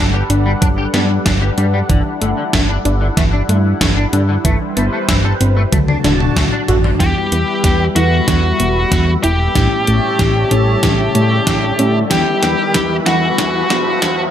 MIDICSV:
0, 0, Header, 1, 10, 480
1, 0, Start_track
1, 0, Tempo, 638298
1, 1425, Time_signature, 4, 2, 24, 8
1, 10759, End_track
2, 0, Start_track
2, 0, Title_t, "FM electric piano"
2, 0, Program_c, 0, 5
2, 5264, Note_on_c, 0, 79, 94
2, 5888, Note_off_c, 0, 79, 0
2, 5985, Note_on_c, 0, 78, 92
2, 6849, Note_off_c, 0, 78, 0
2, 6943, Note_on_c, 0, 79, 89
2, 9008, Note_off_c, 0, 79, 0
2, 9105, Note_on_c, 0, 79, 93
2, 9729, Note_off_c, 0, 79, 0
2, 9824, Note_on_c, 0, 78, 90
2, 10689, Note_off_c, 0, 78, 0
2, 10759, End_track
3, 0, Start_track
3, 0, Title_t, "Analog synth pad"
3, 0, Program_c, 1, 89
3, 0, Note_on_c, 1, 55, 87
3, 0, Note_on_c, 1, 62, 76
3, 0, Note_on_c, 1, 69, 94
3, 0, Note_on_c, 1, 71, 77
3, 0, Note_on_c, 1, 78, 74
3, 1394, Note_off_c, 1, 71, 0
3, 1425, Note_on_c, 1, 64, 76
3, 3314, Note_off_c, 1, 55, 0
3, 3314, Note_off_c, 1, 62, 0
3, 3314, Note_off_c, 1, 78, 0
3, 3345, Note_on_c, 1, 55, 82
3, 3345, Note_on_c, 1, 71, 71
3, 3345, Note_on_c, 1, 72, 90
3, 4276, Note_off_c, 1, 64, 0
3, 4295, Note_off_c, 1, 55, 0
3, 4295, Note_off_c, 1, 71, 0
3, 4295, Note_off_c, 1, 72, 0
3, 4302, Note_on_c, 1, 66, 77
3, 4304, Note_on_c, 1, 50, 85
3, 4304, Note_on_c, 1, 62, 75
3, 4304, Note_on_c, 1, 81, 92
3, 5236, Note_off_c, 1, 69, 0
3, 5254, Note_off_c, 1, 66, 0
3, 5255, Note_off_c, 1, 50, 0
3, 5255, Note_off_c, 1, 62, 0
3, 5255, Note_off_c, 1, 81, 0
3, 5266, Note_on_c, 1, 71, 75
3, 5266, Note_on_c, 1, 83, 95
3, 5267, Note_on_c, 1, 55, 84
3, 5267, Note_on_c, 1, 76, 75
3, 7166, Note_off_c, 1, 71, 0
3, 7166, Note_off_c, 1, 83, 0
3, 7167, Note_off_c, 1, 55, 0
3, 7182, Note_on_c, 1, 55, 82
3, 7183, Note_on_c, 1, 81, 90
3, 7184, Note_on_c, 1, 73, 78
3, 9085, Note_off_c, 1, 73, 0
3, 9085, Note_off_c, 1, 81, 0
3, 9105, Note_on_c, 1, 71, 79
3, 9106, Note_on_c, 1, 83, 91
3, 10759, Note_off_c, 1, 55, 0
3, 10759, Note_off_c, 1, 71, 0
3, 10759, Note_off_c, 1, 76, 0
3, 10759, Note_off_c, 1, 83, 0
3, 10759, End_track
4, 0, Start_track
4, 0, Title_t, "Lead electric guitar"
4, 0, Program_c, 2, 29
4, 5266, Note_on_c, 2, 67, 92
4, 5889, Note_off_c, 2, 67, 0
4, 5985, Note_on_c, 2, 66, 93
4, 6849, Note_off_c, 2, 66, 0
4, 6944, Note_on_c, 2, 67, 91
4, 9009, Note_off_c, 2, 67, 0
4, 9105, Note_on_c, 2, 67, 96
4, 9729, Note_off_c, 2, 67, 0
4, 9823, Note_on_c, 2, 66, 96
4, 10688, Note_off_c, 2, 66, 0
4, 10759, End_track
5, 0, Start_track
5, 0, Title_t, "Tine electric piano"
5, 0, Program_c, 3, 4
5, 5265, Note_on_c, 3, 55, 86
5, 5265, Note_on_c, 3, 59, 82
5, 5265, Note_on_c, 3, 64, 80
5, 5265, Note_on_c, 3, 67, 94
5, 5956, Note_off_c, 3, 55, 0
5, 5956, Note_off_c, 3, 59, 0
5, 5956, Note_off_c, 3, 64, 0
5, 5956, Note_off_c, 3, 67, 0
5, 5984, Note_on_c, 3, 59, 70
5, 5984, Note_on_c, 3, 64, 69
5, 5985, Note_on_c, 3, 55, 75
5, 5985, Note_on_c, 3, 69, 85
5, 7156, Note_off_c, 3, 55, 0
5, 7156, Note_off_c, 3, 59, 0
5, 7156, Note_off_c, 3, 64, 0
5, 7156, Note_off_c, 3, 69, 0
5, 7185, Note_on_c, 3, 45, 93
5, 7185, Note_on_c, 3, 57, 80
5, 7185, Note_on_c, 3, 61, 81
5, 7185, Note_on_c, 3, 64, 79
5, 7185, Note_on_c, 3, 67, 97
5, 7876, Note_off_c, 3, 45, 0
5, 7876, Note_off_c, 3, 57, 0
5, 7876, Note_off_c, 3, 61, 0
5, 7876, Note_off_c, 3, 64, 0
5, 7876, Note_off_c, 3, 67, 0
5, 7904, Note_on_c, 3, 45, 75
5, 7904, Note_on_c, 3, 57, 69
5, 7904, Note_on_c, 3, 61, 70
5, 7904, Note_on_c, 3, 64, 69
5, 7904, Note_on_c, 3, 69, 85
5, 9076, Note_off_c, 3, 45, 0
5, 9076, Note_off_c, 3, 57, 0
5, 9076, Note_off_c, 3, 61, 0
5, 9076, Note_off_c, 3, 64, 0
5, 9076, Note_off_c, 3, 69, 0
5, 9104, Note_on_c, 3, 55, 92
5, 9104, Note_on_c, 3, 59, 82
5, 9104, Note_on_c, 3, 67, 98
5, 9105, Note_on_c, 3, 64, 85
5, 9796, Note_off_c, 3, 55, 0
5, 9796, Note_off_c, 3, 59, 0
5, 9796, Note_off_c, 3, 64, 0
5, 9796, Note_off_c, 3, 67, 0
5, 9824, Note_on_c, 3, 59, 69
5, 9825, Note_on_c, 3, 55, 76
5, 9825, Note_on_c, 3, 64, 74
5, 9825, Note_on_c, 3, 69, 89
5, 10759, Note_off_c, 3, 55, 0
5, 10759, Note_off_c, 3, 59, 0
5, 10759, Note_off_c, 3, 64, 0
5, 10759, Note_off_c, 3, 69, 0
5, 10759, End_track
6, 0, Start_track
6, 0, Title_t, "Clean electric guitar"
6, 0, Program_c, 4, 27
6, 104, Note_on_c, 4, 67, 73
6, 165, Note_off_c, 4, 67, 0
6, 345, Note_on_c, 4, 55, 97
6, 381, Note_off_c, 4, 55, 0
6, 464, Note_on_c, 4, 62, 84
6, 500, Note_off_c, 4, 62, 0
6, 585, Note_on_c, 4, 67, 74
6, 645, Note_off_c, 4, 67, 0
6, 704, Note_on_c, 4, 55, 75
6, 764, Note_off_c, 4, 55, 0
6, 944, Note_on_c, 4, 62, 81
6, 980, Note_off_c, 4, 62, 0
6, 1063, Note_on_c, 4, 67, 75
6, 1124, Note_off_c, 4, 67, 0
6, 1185, Note_on_c, 4, 55, 73
6, 1245, Note_off_c, 4, 55, 0
6, 1306, Note_on_c, 4, 55, 100
6, 1341, Note_off_c, 4, 55, 0
6, 1426, Note_on_c, 4, 50, 99
6, 1515, Note_off_c, 4, 50, 0
6, 1665, Note_on_c, 4, 50, 75
6, 1725, Note_off_c, 4, 50, 0
6, 1784, Note_on_c, 4, 50, 77
6, 1821, Note_off_c, 4, 50, 0
6, 1906, Note_on_c, 4, 57, 82
6, 1941, Note_off_c, 4, 57, 0
6, 2024, Note_on_c, 4, 62, 73
6, 2084, Note_off_c, 4, 62, 0
6, 2264, Note_on_c, 4, 50, 92
6, 2300, Note_off_c, 4, 50, 0
6, 2384, Note_on_c, 4, 57, 80
6, 2421, Note_off_c, 4, 57, 0
6, 2504, Note_on_c, 4, 62, 74
6, 2564, Note_off_c, 4, 62, 0
6, 2625, Note_on_c, 4, 50, 74
6, 2685, Note_off_c, 4, 50, 0
6, 2863, Note_on_c, 4, 57, 83
6, 2900, Note_off_c, 4, 57, 0
6, 2984, Note_on_c, 4, 62, 78
6, 3044, Note_off_c, 4, 62, 0
6, 3104, Note_on_c, 4, 50, 74
6, 3164, Note_off_c, 4, 50, 0
6, 3225, Note_on_c, 4, 50, 103
6, 3261, Note_off_c, 4, 50, 0
6, 3345, Note_on_c, 4, 57, 97
6, 3435, Note_off_c, 4, 57, 0
6, 3584, Note_on_c, 4, 57, 74
6, 3644, Note_off_c, 4, 57, 0
6, 3705, Note_on_c, 4, 57, 77
6, 3741, Note_off_c, 4, 57, 0
6, 3824, Note_on_c, 4, 64, 81
6, 3860, Note_off_c, 4, 64, 0
6, 3946, Note_on_c, 4, 69, 70
6, 4005, Note_off_c, 4, 69, 0
6, 4185, Note_on_c, 4, 57, 97
6, 4221, Note_off_c, 4, 57, 0
6, 4306, Note_on_c, 4, 57, 80
6, 4341, Note_off_c, 4, 57, 0
6, 4425, Note_on_c, 4, 62, 74
6, 4485, Note_off_c, 4, 62, 0
6, 4546, Note_on_c, 4, 50, 76
6, 4606, Note_off_c, 4, 50, 0
6, 4787, Note_on_c, 4, 57, 86
6, 4822, Note_off_c, 4, 57, 0
6, 4906, Note_on_c, 4, 62, 76
6, 4966, Note_off_c, 4, 62, 0
6, 5025, Note_on_c, 4, 50, 73
6, 5085, Note_off_c, 4, 50, 0
6, 5145, Note_on_c, 4, 50, 103
6, 5181, Note_off_c, 4, 50, 0
6, 10759, End_track
7, 0, Start_track
7, 0, Title_t, "Synth arpeggio sound"
7, 0, Program_c, 5, 84
7, 0, Note_on_c, 5, 54, 74
7, 111, Note_off_c, 5, 54, 0
7, 225, Note_on_c, 5, 62, 101
7, 453, Note_off_c, 5, 62, 0
7, 464, Note_on_c, 5, 54, 104
7, 590, Note_off_c, 5, 54, 0
7, 704, Note_on_c, 5, 59, 81
7, 914, Note_off_c, 5, 59, 0
7, 943, Note_on_c, 5, 54, 79
7, 1070, Note_off_c, 5, 54, 0
7, 1185, Note_on_c, 5, 62, 100
7, 1413, Note_off_c, 5, 62, 0
7, 1424, Note_on_c, 5, 52, 98
7, 1550, Note_off_c, 5, 52, 0
7, 1664, Note_on_c, 5, 57, 74
7, 1874, Note_off_c, 5, 57, 0
7, 1904, Note_on_c, 5, 52, 76
7, 2030, Note_off_c, 5, 52, 0
7, 2144, Note_on_c, 5, 62, 101
7, 2373, Note_off_c, 5, 62, 0
7, 2384, Note_on_c, 5, 52, 100
7, 2510, Note_off_c, 5, 52, 0
7, 2625, Note_on_c, 5, 57, 79
7, 2835, Note_off_c, 5, 57, 0
7, 2865, Note_on_c, 5, 52, 82
7, 2991, Note_off_c, 5, 52, 0
7, 3106, Note_on_c, 5, 62, 104
7, 3333, Note_off_c, 5, 62, 0
7, 3345, Note_on_c, 5, 52, 100
7, 3471, Note_off_c, 5, 52, 0
7, 3586, Note_on_c, 5, 59, 78
7, 3795, Note_off_c, 5, 59, 0
7, 3825, Note_on_c, 5, 52, 76
7, 3951, Note_off_c, 5, 52, 0
7, 4066, Note_on_c, 5, 60, 102
7, 4293, Note_off_c, 5, 60, 0
7, 4306, Note_on_c, 5, 54, 105
7, 4431, Note_off_c, 5, 54, 0
7, 4546, Note_on_c, 5, 62, 76
7, 4755, Note_off_c, 5, 62, 0
7, 4786, Note_on_c, 5, 54, 78
7, 4911, Note_off_c, 5, 54, 0
7, 5026, Note_on_c, 5, 66, 103
7, 5253, Note_off_c, 5, 66, 0
7, 5265, Note_on_c, 5, 52, 102
7, 5391, Note_off_c, 5, 52, 0
7, 5506, Note_on_c, 5, 59, 77
7, 5715, Note_off_c, 5, 59, 0
7, 5747, Note_on_c, 5, 52, 76
7, 5872, Note_off_c, 5, 52, 0
7, 5985, Note_on_c, 5, 64, 99
7, 6213, Note_off_c, 5, 64, 0
7, 6225, Note_on_c, 5, 52, 99
7, 6351, Note_off_c, 5, 52, 0
7, 6465, Note_on_c, 5, 59, 77
7, 6675, Note_off_c, 5, 59, 0
7, 6705, Note_on_c, 5, 52, 78
7, 6831, Note_off_c, 5, 52, 0
7, 6944, Note_on_c, 5, 64, 97
7, 7173, Note_off_c, 5, 64, 0
7, 7185, Note_on_c, 5, 52, 100
7, 7311, Note_off_c, 5, 52, 0
7, 7425, Note_on_c, 5, 57, 73
7, 7635, Note_off_c, 5, 57, 0
7, 7665, Note_on_c, 5, 52, 74
7, 7791, Note_off_c, 5, 52, 0
7, 7904, Note_on_c, 5, 61, 106
7, 8133, Note_off_c, 5, 61, 0
7, 8145, Note_on_c, 5, 52, 107
7, 8271, Note_off_c, 5, 52, 0
7, 8386, Note_on_c, 5, 57, 79
7, 8595, Note_off_c, 5, 57, 0
7, 8625, Note_on_c, 5, 52, 78
7, 8751, Note_off_c, 5, 52, 0
7, 8864, Note_on_c, 5, 61, 98
7, 9092, Note_off_c, 5, 61, 0
7, 9105, Note_on_c, 5, 52, 103
7, 9231, Note_off_c, 5, 52, 0
7, 9345, Note_on_c, 5, 59, 73
7, 9555, Note_off_c, 5, 59, 0
7, 9585, Note_on_c, 5, 52, 78
7, 9711, Note_off_c, 5, 52, 0
7, 9825, Note_on_c, 5, 64, 99
7, 10053, Note_off_c, 5, 64, 0
7, 10066, Note_on_c, 5, 52, 103
7, 10191, Note_off_c, 5, 52, 0
7, 10305, Note_on_c, 5, 59, 81
7, 10515, Note_off_c, 5, 59, 0
7, 10546, Note_on_c, 5, 52, 77
7, 10671, Note_off_c, 5, 52, 0
7, 10759, End_track
8, 0, Start_track
8, 0, Title_t, "Analog synth bass"
8, 0, Program_c, 6, 38
8, 0, Note_on_c, 6, 31, 83
8, 173, Note_off_c, 6, 31, 0
8, 225, Note_on_c, 6, 31, 99
8, 414, Note_off_c, 6, 31, 0
8, 465, Note_on_c, 6, 31, 88
8, 654, Note_off_c, 6, 31, 0
8, 705, Note_on_c, 6, 43, 92
8, 894, Note_off_c, 6, 43, 0
8, 945, Note_on_c, 6, 31, 100
8, 1133, Note_off_c, 6, 31, 0
8, 1185, Note_on_c, 6, 43, 85
8, 1374, Note_off_c, 6, 43, 0
8, 1424, Note_on_c, 6, 31, 97
8, 1519, Note_off_c, 6, 31, 0
8, 1665, Note_on_c, 6, 31, 81
8, 1759, Note_off_c, 6, 31, 0
8, 1904, Note_on_c, 6, 31, 81
8, 2093, Note_off_c, 6, 31, 0
8, 2144, Note_on_c, 6, 31, 98
8, 2333, Note_off_c, 6, 31, 0
8, 2385, Note_on_c, 6, 31, 89
8, 2574, Note_off_c, 6, 31, 0
8, 2622, Note_on_c, 6, 43, 92
8, 2812, Note_off_c, 6, 43, 0
8, 2865, Note_on_c, 6, 31, 103
8, 3054, Note_off_c, 6, 31, 0
8, 3105, Note_on_c, 6, 43, 90
8, 3294, Note_off_c, 6, 43, 0
8, 3345, Note_on_c, 6, 31, 96
8, 3439, Note_off_c, 6, 31, 0
8, 3586, Note_on_c, 6, 31, 82
8, 3680, Note_off_c, 6, 31, 0
8, 3825, Note_on_c, 6, 31, 78
8, 4014, Note_off_c, 6, 31, 0
8, 4067, Note_on_c, 6, 31, 97
8, 4255, Note_off_c, 6, 31, 0
8, 4305, Note_on_c, 6, 38, 90
8, 4493, Note_off_c, 6, 38, 0
8, 4546, Note_on_c, 6, 26, 92
8, 4734, Note_off_c, 6, 26, 0
8, 4785, Note_on_c, 6, 38, 85
8, 4879, Note_off_c, 6, 38, 0
8, 5027, Note_on_c, 6, 33, 86
8, 5215, Note_off_c, 6, 33, 0
8, 5265, Note_on_c, 6, 40, 96
8, 5359, Note_off_c, 6, 40, 0
8, 5505, Note_on_c, 6, 40, 80
8, 5599, Note_off_c, 6, 40, 0
8, 5745, Note_on_c, 6, 40, 80
8, 5934, Note_off_c, 6, 40, 0
8, 5986, Note_on_c, 6, 40, 96
8, 6174, Note_off_c, 6, 40, 0
8, 6224, Note_on_c, 6, 40, 91
8, 6413, Note_off_c, 6, 40, 0
8, 6466, Note_on_c, 6, 28, 96
8, 6654, Note_off_c, 6, 28, 0
8, 6705, Note_on_c, 6, 40, 102
8, 6893, Note_off_c, 6, 40, 0
8, 6944, Note_on_c, 6, 28, 89
8, 7133, Note_off_c, 6, 28, 0
8, 7185, Note_on_c, 6, 33, 102
8, 7279, Note_off_c, 6, 33, 0
8, 7425, Note_on_c, 6, 33, 82
8, 7519, Note_off_c, 6, 33, 0
8, 7665, Note_on_c, 6, 33, 81
8, 7854, Note_off_c, 6, 33, 0
8, 7904, Note_on_c, 6, 33, 99
8, 8093, Note_off_c, 6, 33, 0
8, 8144, Note_on_c, 6, 33, 88
8, 8333, Note_off_c, 6, 33, 0
8, 8386, Note_on_c, 6, 45, 93
8, 8574, Note_off_c, 6, 45, 0
8, 8624, Note_on_c, 6, 33, 105
8, 8813, Note_off_c, 6, 33, 0
8, 8865, Note_on_c, 6, 45, 88
8, 9054, Note_off_c, 6, 45, 0
8, 9104, Note_on_c, 6, 40, 99
8, 9199, Note_off_c, 6, 40, 0
8, 9344, Note_on_c, 6, 40, 79
8, 9439, Note_off_c, 6, 40, 0
8, 9585, Note_on_c, 6, 40, 78
8, 9774, Note_off_c, 6, 40, 0
8, 9826, Note_on_c, 6, 40, 96
8, 10014, Note_off_c, 6, 40, 0
8, 10064, Note_on_c, 6, 40, 89
8, 10253, Note_off_c, 6, 40, 0
8, 10307, Note_on_c, 6, 28, 95
8, 10495, Note_off_c, 6, 28, 0
8, 10545, Note_on_c, 6, 40, 108
8, 10733, Note_off_c, 6, 40, 0
8, 10759, End_track
9, 0, Start_track
9, 0, Title_t, "Riser"
9, 0, Program_c, 7, 103
9, 5264, Note_on_c, 7, 60, 78
9, 10759, Note_off_c, 7, 60, 0
9, 10759, End_track
10, 0, Start_track
10, 0, Title_t, "Drums"
10, 225, Note_on_c, 9, 42, 62
10, 300, Note_off_c, 9, 42, 0
10, 465, Note_on_c, 9, 36, 114
10, 465, Note_on_c, 9, 42, 88
10, 540, Note_off_c, 9, 36, 0
10, 541, Note_off_c, 9, 42, 0
10, 705, Note_on_c, 9, 38, 56
10, 705, Note_on_c, 9, 42, 60
10, 780, Note_off_c, 9, 38, 0
10, 780, Note_off_c, 9, 42, 0
10, 945, Note_on_c, 9, 36, 111
10, 946, Note_on_c, 9, 38, 116
10, 946, Note_on_c, 9, 42, 91
10, 1020, Note_off_c, 9, 36, 0
10, 1021, Note_off_c, 9, 38, 0
10, 1021, Note_off_c, 9, 42, 0
10, 1186, Note_on_c, 9, 42, 59
10, 1261, Note_off_c, 9, 42, 0
10, 1425, Note_on_c, 9, 36, 113
10, 1426, Note_on_c, 9, 42, 90
10, 1500, Note_off_c, 9, 36, 0
10, 1501, Note_off_c, 9, 42, 0
10, 1666, Note_on_c, 9, 42, 63
10, 1741, Note_off_c, 9, 42, 0
10, 1905, Note_on_c, 9, 36, 109
10, 1905, Note_on_c, 9, 38, 109
10, 1905, Note_on_c, 9, 42, 85
10, 1980, Note_off_c, 9, 36, 0
10, 1980, Note_off_c, 9, 38, 0
10, 1980, Note_off_c, 9, 42, 0
10, 2145, Note_on_c, 9, 42, 65
10, 2221, Note_off_c, 9, 42, 0
10, 2385, Note_on_c, 9, 36, 114
10, 2386, Note_on_c, 9, 38, 59
10, 2386, Note_on_c, 9, 42, 86
10, 2460, Note_off_c, 9, 36, 0
10, 2461, Note_off_c, 9, 38, 0
10, 2461, Note_off_c, 9, 42, 0
10, 2626, Note_on_c, 9, 42, 63
10, 2701, Note_off_c, 9, 42, 0
10, 2865, Note_on_c, 9, 36, 109
10, 2865, Note_on_c, 9, 38, 113
10, 2865, Note_on_c, 9, 42, 89
10, 2940, Note_off_c, 9, 36, 0
10, 2941, Note_off_c, 9, 38, 0
10, 2941, Note_off_c, 9, 42, 0
10, 3106, Note_on_c, 9, 42, 63
10, 3181, Note_off_c, 9, 42, 0
10, 3345, Note_on_c, 9, 36, 114
10, 3345, Note_on_c, 9, 42, 98
10, 3420, Note_off_c, 9, 36, 0
10, 3420, Note_off_c, 9, 42, 0
10, 3586, Note_on_c, 9, 42, 66
10, 3661, Note_off_c, 9, 42, 0
10, 3825, Note_on_c, 9, 36, 116
10, 3825, Note_on_c, 9, 38, 108
10, 3825, Note_on_c, 9, 42, 92
10, 3900, Note_off_c, 9, 36, 0
10, 3900, Note_off_c, 9, 38, 0
10, 3900, Note_off_c, 9, 42, 0
10, 4066, Note_on_c, 9, 42, 65
10, 4141, Note_off_c, 9, 42, 0
10, 4305, Note_on_c, 9, 36, 114
10, 4305, Note_on_c, 9, 42, 94
10, 4305, Note_on_c, 9, 48, 63
10, 4380, Note_off_c, 9, 36, 0
10, 4380, Note_off_c, 9, 42, 0
10, 4380, Note_off_c, 9, 48, 0
10, 4425, Note_on_c, 9, 48, 57
10, 4500, Note_off_c, 9, 48, 0
10, 4545, Note_on_c, 9, 38, 56
10, 4545, Note_on_c, 9, 42, 63
10, 4545, Note_on_c, 9, 48, 70
10, 4620, Note_off_c, 9, 38, 0
10, 4620, Note_off_c, 9, 42, 0
10, 4620, Note_off_c, 9, 48, 0
10, 4666, Note_on_c, 9, 47, 66
10, 4741, Note_off_c, 9, 47, 0
10, 4785, Note_on_c, 9, 36, 106
10, 4787, Note_on_c, 9, 38, 117
10, 4787, Note_on_c, 9, 42, 92
10, 4787, Note_on_c, 9, 47, 86
10, 4860, Note_off_c, 9, 36, 0
10, 4862, Note_off_c, 9, 38, 0
10, 4862, Note_off_c, 9, 42, 0
10, 4862, Note_off_c, 9, 47, 0
10, 5027, Note_on_c, 9, 42, 64
10, 5027, Note_on_c, 9, 45, 95
10, 5102, Note_off_c, 9, 42, 0
10, 5102, Note_off_c, 9, 45, 0
10, 5147, Note_on_c, 9, 45, 85
10, 5222, Note_off_c, 9, 45, 0
10, 5265, Note_on_c, 9, 36, 118
10, 5266, Note_on_c, 9, 38, 48
10, 5266, Note_on_c, 9, 42, 93
10, 5340, Note_off_c, 9, 36, 0
10, 5341, Note_off_c, 9, 38, 0
10, 5341, Note_off_c, 9, 42, 0
10, 5505, Note_on_c, 9, 42, 66
10, 5580, Note_off_c, 9, 42, 0
10, 5745, Note_on_c, 9, 36, 118
10, 5745, Note_on_c, 9, 38, 47
10, 5745, Note_on_c, 9, 42, 96
10, 5820, Note_off_c, 9, 36, 0
10, 5820, Note_off_c, 9, 38, 0
10, 5820, Note_off_c, 9, 42, 0
10, 5985, Note_on_c, 9, 42, 69
10, 6061, Note_off_c, 9, 42, 0
10, 6225, Note_on_c, 9, 36, 121
10, 6225, Note_on_c, 9, 38, 54
10, 6225, Note_on_c, 9, 42, 93
10, 6300, Note_off_c, 9, 36, 0
10, 6300, Note_off_c, 9, 38, 0
10, 6300, Note_off_c, 9, 42, 0
10, 6465, Note_on_c, 9, 42, 65
10, 6540, Note_off_c, 9, 42, 0
10, 6705, Note_on_c, 9, 36, 115
10, 6706, Note_on_c, 9, 38, 56
10, 6706, Note_on_c, 9, 42, 95
10, 6780, Note_off_c, 9, 36, 0
10, 6781, Note_off_c, 9, 38, 0
10, 6781, Note_off_c, 9, 42, 0
10, 6946, Note_on_c, 9, 42, 67
10, 7021, Note_off_c, 9, 42, 0
10, 7185, Note_on_c, 9, 36, 123
10, 7185, Note_on_c, 9, 38, 59
10, 7185, Note_on_c, 9, 42, 93
10, 7260, Note_off_c, 9, 36, 0
10, 7260, Note_off_c, 9, 38, 0
10, 7260, Note_off_c, 9, 42, 0
10, 7425, Note_on_c, 9, 42, 65
10, 7500, Note_off_c, 9, 42, 0
10, 7664, Note_on_c, 9, 36, 120
10, 7665, Note_on_c, 9, 38, 60
10, 7665, Note_on_c, 9, 42, 97
10, 7740, Note_off_c, 9, 36, 0
10, 7740, Note_off_c, 9, 38, 0
10, 7740, Note_off_c, 9, 42, 0
10, 7904, Note_on_c, 9, 42, 72
10, 7980, Note_off_c, 9, 42, 0
10, 8144, Note_on_c, 9, 36, 119
10, 8144, Note_on_c, 9, 38, 66
10, 8144, Note_on_c, 9, 42, 99
10, 8219, Note_off_c, 9, 38, 0
10, 8219, Note_off_c, 9, 42, 0
10, 8220, Note_off_c, 9, 36, 0
10, 8385, Note_on_c, 9, 42, 68
10, 8460, Note_off_c, 9, 42, 0
10, 8624, Note_on_c, 9, 36, 120
10, 8625, Note_on_c, 9, 38, 73
10, 8625, Note_on_c, 9, 42, 97
10, 8700, Note_off_c, 9, 36, 0
10, 8700, Note_off_c, 9, 38, 0
10, 8700, Note_off_c, 9, 42, 0
10, 8865, Note_on_c, 9, 42, 69
10, 8941, Note_off_c, 9, 42, 0
10, 9104, Note_on_c, 9, 38, 77
10, 9104, Note_on_c, 9, 42, 96
10, 9105, Note_on_c, 9, 36, 125
10, 9180, Note_off_c, 9, 36, 0
10, 9180, Note_off_c, 9, 38, 0
10, 9180, Note_off_c, 9, 42, 0
10, 9344, Note_on_c, 9, 38, 73
10, 9344, Note_on_c, 9, 42, 65
10, 9420, Note_off_c, 9, 38, 0
10, 9420, Note_off_c, 9, 42, 0
10, 9583, Note_on_c, 9, 38, 76
10, 9583, Note_on_c, 9, 42, 92
10, 9585, Note_on_c, 9, 36, 125
10, 9658, Note_off_c, 9, 38, 0
10, 9658, Note_off_c, 9, 42, 0
10, 9660, Note_off_c, 9, 36, 0
10, 9824, Note_on_c, 9, 38, 81
10, 9824, Note_on_c, 9, 42, 69
10, 9899, Note_off_c, 9, 38, 0
10, 9899, Note_off_c, 9, 42, 0
10, 10065, Note_on_c, 9, 36, 123
10, 10065, Note_on_c, 9, 38, 82
10, 10065, Note_on_c, 9, 42, 92
10, 10140, Note_off_c, 9, 36, 0
10, 10140, Note_off_c, 9, 38, 0
10, 10140, Note_off_c, 9, 42, 0
10, 10305, Note_on_c, 9, 38, 82
10, 10305, Note_on_c, 9, 42, 66
10, 10380, Note_off_c, 9, 38, 0
10, 10380, Note_off_c, 9, 42, 0
10, 10544, Note_on_c, 9, 38, 89
10, 10544, Note_on_c, 9, 42, 97
10, 10545, Note_on_c, 9, 36, 121
10, 10619, Note_off_c, 9, 38, 0
10, 10619, Note_off_c, 9, 42, 0
10, 10620, Note_off_c, 9, 36, 0
10, 10759, End_track
0, 0, End_of_file